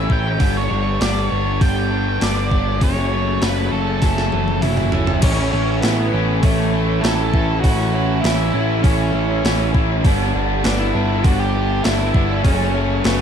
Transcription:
Already playing: E3 A3 E5
0.09 A1 A3 C#4 E4 G5, kick
0.39 G1 G2 D3 G3 B3 D4, kick, open hi-hat
0.57 C#5
0.70 G1 G3 B3 D4
1.00 G1 D3 G3 B3 D4 D5, snare, open hi-hat
1.18 D5
1.29 G1 G3 B3 D4 C#5
1.60 G1 G2 D3 G3 B3 D4 G5, kick, open hi-hat
1.90 G3 B3 D4
2.20 G1 D3 G3 B3 D4 D5, snare, open hi-hat
2.37 D5
2.51 G1 G3 B3 D4, kick
2.80 F#1 F#2 C#3 F#3 A3 C#4 C#5, kick, open hi-hat
3.11 F#3 A3 C#4
3.41 F#1 C#3 F#3 A3 C#4 B4, snare, open hi-hat
3.71 F#1 F#3 A3 C#4 A4
4.01 F#1 F#2 C#3 F#3 A3 C#4, kick, snare, open hi-hat
4.18 snare
4.31 F#1 F#3 A3 C#4, high tom
4.48 high tom
4.61 F#1 C#3 F#3 A3 C#4 E4, open hi-hat, mid tom
4.77 E4, mid tom
4.92 F#1 F#3 A3 C#4, floor tom
5.07 floor tom
5.22 A1 A2 E3 A3 C#4 E4, kick, open hi-hat, crash
5.51 A1 A3 C#4 E4
5.81 A1 E3 A3 B3 C#4, snare, open hi-hat
5.85 E4
6.13 A1 A3 C#4 E4
6.42 A1 A2 E3 A3 C#4 E4, kick, open hi-hat
6.72 A3 C#4 E4
7.01 A1 E3 A3 C#4 E4 A4, snare, open hi-hat
7.15 A4
7.33 A1 A3 C#4 E4, kick
7.60 A1 A2 E3 A3 C#4 E4 F#4, kick, open hi-hat
7.92 A3 C#4 E4
8.21 A1 E3 A3 C#4 E4, open hi-hat
8.25 E4, snare
8.53 A1 A3 C#4 E4
8.82 A1 A2 E3 A3 C#4 E4, kick, open hi-hat
9.12 A1 A3 C#4 E4
9.43 A1 E3 A3 C#4 E4, snare, open hi-hat
9.74 A1 A3 C#4 E4, kick
10.04 G1 G2 D3 G3 B3 D4, kick, open hi-hat
10.34 G1 G3 B3 D4
10.64 G1 D3 G3 B3 D4, snare, open hi-hat
10.79 E4
10.94 G1 G3 B3 D4
11.24 G1 G2 D3 G3 B3 D4 F#4, kick, open hi-hat
11.39 G4
11.54 G3 B3 D4
11.83 G1 D3 G3 B3 D4 E4, snare, open hi-hat
11.99 E4
12.14 G1 G3 B3 D4, kick
12.44 F#1 F#2 C#3 F#3 A3 C#4, kick, open hi-hat
12.74 F#3 A3 C#4
13.04 F#1 C#3 F#3 A3 B3 C#4, snare, open hi-hat

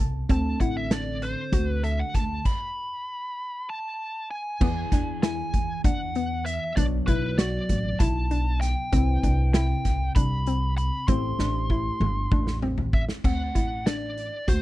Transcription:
Already playing: B2 B3 A4
0.00 C2 A5
0.29 D2 D3 C4 F#4 D5 A5, kick, closed hi-hat
0.60 A1 E4 F#5, kick, closed hi-hat
0.77 E5
0.91 D4 D5, snare, closed hi-hat
1.22 C5, closed hi-hat
1.52 D2 F#4, kick, closed hi-hat
1.68 B4
1.83 A4 E5, closed hi-hat
1.99 F#5
2.14 D2 A5, kick, snare, closed hi-hat
2.45 B5, kick, crash
3.70 A5
4.31 G#5
4.61 E2 E3 B3 G#4 D5, kick, crash
4.92 E2 D4, kick, snare, closed hi-hat
5.23 E4 G#5, snare, closed hi-hat
5.53 E2, kick, closed hi-hat
5.84 E2 D4 F#5, kick, closed hi-hat
6.15 B3, closed hi-hat
6.46 E5, closed hi-hat
6.76 B1 B2 F#3 B3 D4 D5, kick, closed hi-hat
7.07 B1 E4 B4, kick, closed hi-hat
7.38 F#4 D5, snare, closed hi-hat
7.69 A1, kick, closed hi-hat
7.99 B1 E4 A5, kick, snare, closed hi-hat
8.31 D4, closed hi-hat
8.61 G5, snare, closed hi-hat
8.92 C2 C3 C4 E4 B4, kick, closed hi-hat
9.23 C2 D4, kick, closed hi-hat
9.54 E4 G5, snare, closed hi-hat
9.85 C2, kick, snare, closed hi-hat
10.15 C2 D4 B5, kick, closed hi-hat
10.46 C4, closed hi-hat
10.77 B5, closed hi-hat
11.08 A1 A3 C4 E4 G4 C5 C6, kick, closed hi-hat
11.39 A1 D4, snare
11.70 E4, kick
12.00 G1, mid tom
12.31 A1 D4, kick, mid tom
12.47 snare
12.62 C4, mid tom
12.78 floor tom
12.93 E5, kick
13.09 snare
13.24 D2 C4 F#5, kick, crash
13.55 A1 E4, kick, closed hi-hat
13.86 D4 D5, snare, closed hi-hat
14.18 closed hi-hat
14.48 D2 F#4 C5, kick, closed hi-hat

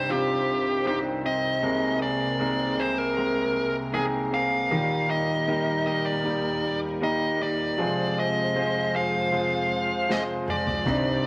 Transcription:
Already playing: C2 G2 C3 D#3 G3 C4 D4 D#4 G4 C5 D5
0.09 C4 D#4 F4 G4
0.85 D#3 C4 D4 D#4 G4 C5
1.23 C4 G4 D#5
1.62 C2 C3 D#3 G#3 A#3 C4 G#4 A#4
2.00 A#3 C4 G#4 D5
2.39 D#3 G#3 A#3 C4 G#4 A#4
2.78 A#3 C4 G#4 C5
2.98 A#4
3.17 G#3 C4 A#4
3.92 D#3 G#3 A#3 C4 G#4 A#4
4.31 A#3 C4 G#4 F5
4.70 D#2 A#2 D#3 G3 A#3 D#4 G4 A#4
5.08 A#3 D#4 G4 D#5
5.46 D#3 G3 A#3 D#4 G4 A#4
5.85 A#3 D#4 G4 D#5
6.06 D5
6.24 G3 D#4 G4
7.01 D#3 G3 A#3 D#4 G4 A#4 D#5
7.39 A#3 D#4 G4 D5
7.77 F2 C3 F3 G#3 C4 F4 G#4 C5
8.16 F3 G#3 C4 G#4 D#5
8.55 F3 G#3 C4 F4 G#4 C5
8.93 F3 G#3 C4 G#4 F5
9.32 G#3 F4 C5
10.08 F3 G#3 C4 F4 G#4 C5 D#5, snare
10.47 F3 G#3 C4 G#4 D5, mid tom
10.67 floor tom
10.85 C2 G2 C3 D#3 G3 C4 D4 D#4 G4 C5 D5, kick, floor tom
11.24 G4

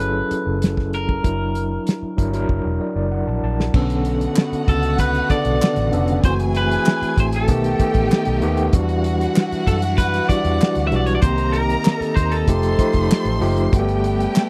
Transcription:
Already playing: G1 F#3 C#4 E4 G#4 A4 B4
0.31 muted fingered electric bass stroke, closed hi-hat
0.47 F#1
0.62 snare, closed hi-hat
0.77 kick, snare
0.93 A#4, closed hi-hat
1.09 kick
1.23 F#1 F#3 D4 E4 A#4, kick, closed hi-hat
1.55 closed hi-hat
1.87 snare, closed hi-hat
2.02 muted fingered electric bass stroke
2.17 G1 F#3 D4 E4 A#4, kick, closed hi-hat
2.33 F#3 D4 E4 A#4, closed hi-hat
2.49 F#1, kick
2.65 E1
2.81 D5
2.96 F#1 D5
3.12 F#5
3.27 A#1 A5
3.43 A#1 A5
3.60 snare
3.72 B1 B2 D3 A3 B3 C#4 F#4 A4 F#5, kick, crash
3.90 closed hi-hat
4.05 closed hi-hat
4.21 closed hi-hat
4.36 snare, clap
4.52 muted fingered electric bass stroke, closed hi-hat
4.68 C#2 A4, kick, closed hi-hat
4.83 closed hi-hat
4.98 B4, kick, closed hi-hat
5.15 closed hi-hat
5.30 C#3 D3 B3 A4 D5, muted fingered electric bass stroke, kick, closed hi-hat
5.45 B1, closed hi-hat
5.62 snare, clap
5.76 A1, snare, closed hi-hat
5.92 F1 D3 B3 C#4 A4, closed hi-hat
6.08 closed hi-hat
6.23 F#1 E3 F#3 G#3 A3 C4 E4 F#4 G#4 C5 G#5, kick, closed hi-hat
6.30 A3
6.40 closed hi-hat
6.55 B4, closed hi-hat
6.71 closed hi-hat
6.86 snare, clap
7.02 muted fingered electric bass stroke, closed hi-hat
7.17 A1 C5, kick, closed hi-hat
7.32 A4, closed hi-hat
7.48 B1 D#3 A3 B3 D#4 G4 G5, kick, closed hi-hat
7.64 closed hi-hat
7.79 D#3 A3 B3 G4, muted fingered electric bass stroke, kick, closed hi-hat
7.94 A1, kick, closed hi-hat
8.12 snare, clap
8.25 B1, closed hi-hat
8.42 D#2 D#3 A3 B3 G4, closed hi-hat
8.57 closed hi-hat
8.72 E2 E3 G3 D4 E4 F#4 F#5, kick, closed hi-hat
8.89 closed hi-hat
9.04 closed hi-hat
9.21 closed hi-hat
9.36 snare, clap
9.52 muted fingered electric bass stroke, closed hi-hat
9.67 F#2 A4, kick, closed hi-hat
9.82 closed hi-hat
9.98 B4, kick, closed hi-hat
10.14 closed hi-hat
10.29 E3 G3 D4 F#4 D5, muted fingered electric bass stroke, kick, closed hi-hat
10.45 E2, closed hi-hat
10.61 snare, clap
10.75 D2, snare, closed hi-hat
10.87 E5
10.91 B1 E3 G3 D4 F#4, closed hi-hat
10.96 D5
11.06 C#5, closed hi-hat
11.15 D5
11.22 C2 C3 D#3 G3 A#3 C4 D#4 G4 A#4 C5 A#5, kick, closed hi-hat
11.38 closed hi-hat
11.52 A#4, closed hi-hat
11.70 closed hi-hat
11.85 snare, clap
11.99 A4, muted fingered electric bass stroke, closed hi-hat
12.16 D#2 C5, kick, closed hi-hat
12.32 A4, closed hi-hat
12.47 F1 F3 A3 D#4 G4 A4 C5 C6, kick, closed hi-hat
12.63 closed hi-hat
12.79 F3 A3 D#4 G4, kick, closed hi-hat
12.93 F1, kick, closed hi-hat
13.11 snare, clap
13.25 A1, closed hi-hat
13.41 F#1 F3 A3 D#4 G4, open hi-hat
13.57 closed hi-hat
13.72 G1 G3 A3 B3 D4 F#4 G4 A4 B4 G5, kick, closed hi-hat
13.79 G4
13.88 closed hi-hat
14.04 closed hi-hat
14.20 closed hi-hat
14.35 snare, clap

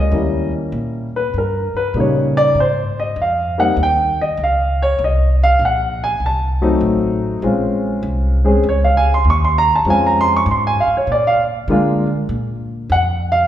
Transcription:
Already playing: C#2 C3 G#3 A#3 F4 D#5
0.11 D#2 G3 A#3 C#4 E4
0.72 A#2
1.16 B4
1.34 G2
1.38 A#4
1.74 B4, muted upright bass stroke
1.94 A#2 C#3 G3 A#3 D#4
2.00 C#5
2.37 D5
2.55 G#2
2.60 C5
3.00 D#5
3.16 F2
3.22 F5
3.58 G3 A#3 C4 D#4 F#5
3.77 D#2
3.83 G5
4.21 D#5
4.37 C#2
4.43 F5
4.82 C#5
4.99 C2
5.04 D#5
5.43 F5
5.59 A#1
5.65 F#5
6.04 G#5
6.20 C2
6.26 A5
6.62 F#3 A3 C4 D#4
6.81 A1
7.42 A#1 G#3 C4 C#4 F4
8.03 C2
8.44 G#3 C4 C#4 G#4
8.63 C#2
8.69 C#5
8.84 F5
8.97 G#5
9.14 C6
9.24 D#2
9.30 C#6
9.45 C6
9.58 A#5
9.75 A5
9.85 F2 G#3 C4 C#4 F4
9.90 G#5
10.06 A#5
10.21 C6
10.36 C#6
10.46 G#2
10.51 C6
10.67 G#5
10.80 F5
10.87 muted upright bass stroke
10.97 C#5
11.07 A#2
11.12 D5
11.27 F5
11.68 D3 G#3 A#3 D4 F4
12.29 A#2
12.90 F2 F#5
13.32 F5

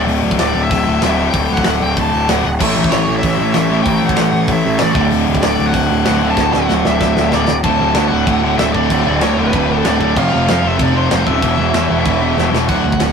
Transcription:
Already playing: D2 A2 D3
0.07 D1, open hi-hat
0.23 D1
0.31 kick
0.39 D1 D5, snare, open hi-hat
0.55 D1
0.64 E5
0.71 D1, kick, open hi-hat
0.87 D1
1.01 D1 D2 A2 D3 E5, snare, open hi-hat
1.17 D2 A2 D3
1.31 D1 G5, kick, open hi-hat
1.50 D1 F#5
1.57 kick
1.64 D1, snare, open hi-hat
1.82 D1 G5
1.97 D1, kick, open hi-hat
2.01 A5
2.13 D1
2.29 D1 D2 A2 F#5, snare, open hi-hat
2.33 D3
2.45 D1
2.59 A1 A2 E3 A3, kick, crash
2.76 A1
2.84 kick
2.90 A1 C#5, snare, open hi-hat
3.08 A1
3.17 E5
3.23 A1, kick, open hi-hat
3.39 A1
3.54 A1 E5, snare, open hi-hat
3.69 A2 E3 A3
3.83 A1 A2 E3 G5, kick, open hi-hat
3.87 A3
4.03 A1 F#5
4.09 kick
4.16 A1, snare, open hi-hat
4.34 A1
4.47 A1, kick, open hi-hat
4.52 E5
4.66 A1
4.78 A1 D5, snare, open hi-hat
4.94 D1 D2 A2 D3, kick
5.11 D1, open hi-hat
5.28 D1
5.35 kick
5.42 D1 D5, snare, open hi-hat
5.59 D1
5.66 F#5
5.74 D1, kick, open hi-hat
5.90 D1
6.05 D1 D2 A2 D3 F#5, snare, open hi-hat
6.21 D2 A2 D3
6.31 A5
6.37 D1, kick, snare
6.53 D1 F#5, snare
6.69 D1, snare
6.85 D1 E5, snare
7.01 D1, kick, snare
7.17 D1, snare
7.32 D1 D2 A2 D3 D5, snare
7.48 D1, snare
7.63 D1 D2 A2 D3 A5, kick, crash
7.79 D1 D2 A2 D3
7.94 D2 A2 D3, snare, crash
8.08 D1 D2 A2 D3 F#5
8.27 D1 D2 A2 D3, kick, crash
8.43 D2 A2 D3
8.58 D1 D2 A2 D3 E5, snare, crash
8.73 D1 D2 A2 D3 D5, kick
8.90 D1 D2 A2 D3, kick, crash
9.06 D1 D2 A2 D3
9.21 D2 A2 D3 C#5, snare, crash
9.37 D1 D2 A2 D3 B4
9.53 D1 D2 A2 D3, kick, crash
9.69 D2 A2 D3
9.85 D1 D2 A2 D3 D5, snare, crash
10.00 D1 D2 A2 D3, kick
10.16 F1 F2 C3 F3 F5, kick, crash
10.32 F1 F2 C3 F3
10.47 F2 C3 F3 F5, snare, crash
10.64 F1 F2 C3 F3 E5
10.78 F1 F2 C3 F3, kick, crash
10.83 D5
10.94 F2 C3 F3
10.98 C5
11.09 F1 F2 C3 F3, snare, crash
11.25 D#1 F2 C3 F3 E5, kick
11.41 E1 E2 B2 E3, kick, crash
11.58 E1 E2 B2 E3
11.74 E2 B2 E3, snare, crash
11.88 E1 E2 B2 E3
12.05 E1 E2 B2 E3, kick, crash
12.21 E2 B2 E3
12.37 E1 E2 B2 E3, snare
12.52 E1 E2 B2 E3, snare
12.68 D1 D2 A2 D3 F#5, kick, crash
12.84 D1 D2 A2
12.92 kick
12.99 D1 D2 A2, snare, crash

